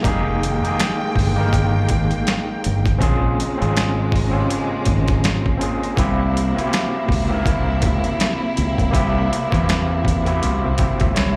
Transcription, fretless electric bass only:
0.05 F1
0.65 muted fretless electric bass stroke
1.17 G1
1.54 G1
1.91 G#1
2.66 G1
3.02 A#1
3.62 G#1
4.88 G#1
5.98 C2
6.58 muted fretless electric bass stroke
7.10 C#2
7.47 C2
7.84 C#2
8.58 C#2
8.95 C2
9.53 E2
10.44 C2
10.66 C2
11.02 C#2
11.18 C2

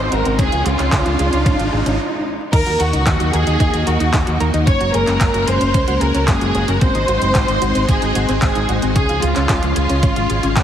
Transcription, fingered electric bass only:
0.12 G#1
0.26 G#1
0.39 C#2
0.52 C#2
0.66 C#2
0.79 C#2
0.92 C#2
1.06 C#2
1.19 C#2
1.33 C#2
1.46 G#1
1.59 G#1
1.73 G#1
1.86 G#1
2.53 D#2
2.66 D#2
2.80 D#2
2.93 C#2
3.07 D#2
3.20 D#2
3.34 D#2
3.47 D#2
3.60 D#2
3.74 D#2
3.87 D#2
4.00 D#2
4.14 D#2
4.27 D#2
4.41 D#2
4.54 D#2
4.67 F#1
4.80 F#1
4.94 F#1
5.07 F#1
5.21 F#1
5.34 F#1
5.47 F#1
5.61 F#1
5.74 C#2
5.88 C#2
6.01 C#2
6.14 C#2
6.28 F#1
6.41 F#1
6.55 F#1
6.68 F#1
6.81 G#1
6.95 G#1
7.08 G#1
7.22 F#1
7.35 G#1
7.48 G#1
7.62 G#1
7.75 G#1
7.89 G#1
8.02 G#1
8.15 G#1
8.29 G#1
8.42 G#1
8.56 G#1
8.69 G#1
8.83 G#1
8.96 C#2
9.09 C#2
9.23 C#2
9.36 C#2
9.49 C#2
9.63 C#2
9.76 C#2
9.90 C#2
10.03 G#1
10.17 G#1
10.30 G#1
10.43 G#1
10.56 C#2

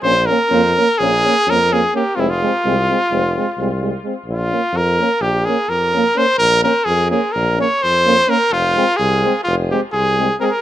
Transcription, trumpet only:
0.02 C5
0.26 A#4
0.98 G#4
1.50 A#4
1.73 G#4
1.96 G4
2.15 F4
2.20 E4
2.30 F4
4.30 F4
4.77 A#4
5.22 G4
5.45 G#4
5.69 A#4
6.17 C5
6.38 A#4
6.64 A#4
6.85 G#4
7.10 G#4
7.32 A#4
7.61 C#5
7.82 C5
8.29 A#4
8.53 F4
8.97 G#4
9.44 F4
9.71 G4
9.93 G#4
10.40 G#4 A#4
10.50 A#4

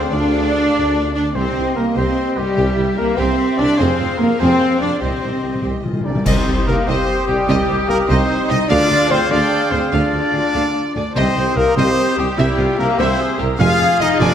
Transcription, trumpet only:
6.05 D5
6.26 C5
6.67 A#4
6.88 C5
7.28 G4
7.90 A#4
8.10 C5
8.50 D#5
8.70 D5
9.12 C5
9.31 D5
9.72 C5
9.93 D5
10.96 D5
11.15 C5
11.57 A#4
11.77 C5
12.19 G4
12.79 A#4
12.99 C5
13.60 F5
14.00 D#5
14.21 D5

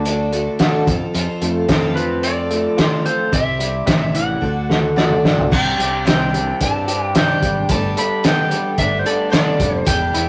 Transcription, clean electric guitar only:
Already playing: D3 A3
0.06 D4
0.33 A3
0.60 F#4
0.87 F2
1.14 F2
1.42 A3
1.68 C4
1.96 F3
2.24 C4
2.51 A3
2.77 F4
3.05 C4
3.32 C3
3.59 G3
3.86 C4
4.14 E3
4.42 D3
4.69 A3
4.97 F#4
5.25 D4
5.52 C3
5.79 G4
6.06 C4
6.33 G3
6.61 D4
6.87 G4
7.15 D4
7.43 G3
7.70 G3
7.97 A4
8.25 B3
8.52 G3
8.80 D4
9.06 A4
9.34 D4
9.60 G3
9.87 E2
10.14 E4

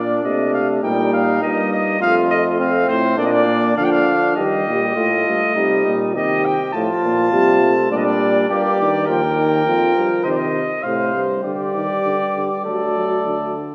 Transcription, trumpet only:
Already playing: D5
0.25 D#5
0.54 F5
0.83 G5
1.13 F5
1.42 D#5
1.72 D#5
2.02 F5
2.30 D#5
2.61 F5
2.89 C5
3.18 D5
3.25 D#5
3.32 D5
3.77 F5
3.84 G5
3.91 F5
4.36 D#5
6.17 D#5
6.45 G5
6.73 A5
7.91 D5
7.97 D#5
8.04 D5
8.50 D5
9.07 G5
10.23 D#5
10.31 D5
10.37 D#5
10.83 F5
11.44 D5
12.65 D5

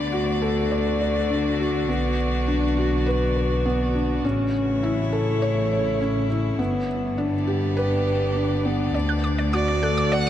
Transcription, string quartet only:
Already playing: D3 A3 B3 D5
0.01 F#4
2.13 B3
4.24 C#3
4.52 C#5
4.68 A3 E4
6.59 D3
6.79 B3
7.34 G4 D5
9.25 A3
9.47 F#4

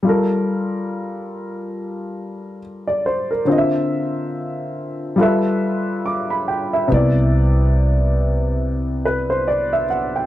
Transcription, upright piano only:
0.03 G3 F4
0.07 A4 A#4
2.87 D5
3.06 C5
3.31 A#4
3.45 D3 C4
3.50 F4 D#5
3.58 E5
5.16 G3 F4 A4
5.21 B4 E5
6.06 D6
6.30 B5
6.48 G5
6.73 E5
6.88 C3 B3
6.92 E4 D5
9.05 B4
9.30 C5
9.48 D5
9.73 E5
9.90 F#5
10.16 G5

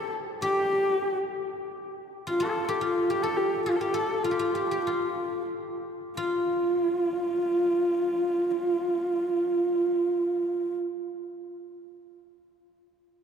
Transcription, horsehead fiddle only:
Already playing: A4
0.42 G4
2.28 F4
2.42 A4
2.65 A4
2.69 G4
2.83 F4
3.10 G4
3.22 A4
3.37 G4
3.65 F4
3.76 A4
3.80 G4
3.94 A4
4.23 F4
4.54 G4
4.70 G4
4.84 F4
6.18 F4

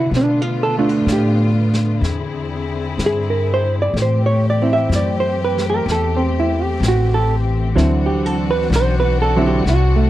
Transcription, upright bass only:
0.11 B2
1.06 A2
2.01 E2
2.98 G2
3.94 A2
4.89 F#2
5.86 E2
6.80 A1
7.76 D2
8.70 B1
9.66 C2

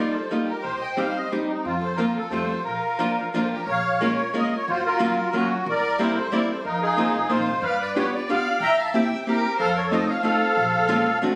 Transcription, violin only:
0.10 A4
0.44 G4
0.59 G4
0.79 D#5
0.93 C5
1.09 C5
1.44 C4
1.61 C4
1.81 A4
1.96 F4
2.14 F4
2.31 A4
2.64 F4
3.35 F4
3.41 A4
3.50 G4
3.67 C#5
4.02 A#4
4.35 A#4
4.53 A#4
4.69 F#4
4.87 F#4
5.35 C#4
5.67 A#4
6.01 G4
6.07 G4
6.15 A4
6.35 A#4
6.53 A4
6.60 A4
6.64 F4
6.83 F4
7.30 F4
7.63 D5
7.82 B4
7.97 G4
8.16 B4
8.30 D5
8.61 G5
8.78 F5
8.95 E5
9.27 G4
9.57 C5
9.76 A#4
9.92 C5
10.10 C#5
10.23 C5

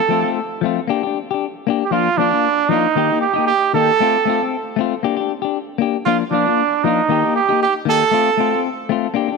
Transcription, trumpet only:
Already playing: A4
1.85 G4
1.92 F4
2.17 D4
2.69 D#4
3.21 G4
3.47 G4
3.74 A4
6.05 F4
6.31 D4
6.83 D#4
7.36 G4
7.63 G4
7.89 A4

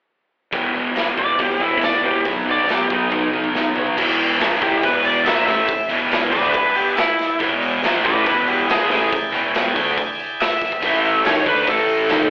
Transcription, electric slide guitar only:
1.19 D5
1.42 G4
1.62 E4
1.84 D5
2.05 G4
2.51 D5
2.74 G4
2.92 D#4
4.63 G4
4.85 B4
5.05 D5
5.25 E5
5.47 E5
6.32 B4 D5
6.52 D4 B4
6.76 B3 G4
6.96 E4
8.06 B4 D5
8.26 D4 B4
8.48 B3 G4
8.70 G#4
10.41 E5
11.26 C#5
11.48 B4
11.69 A4

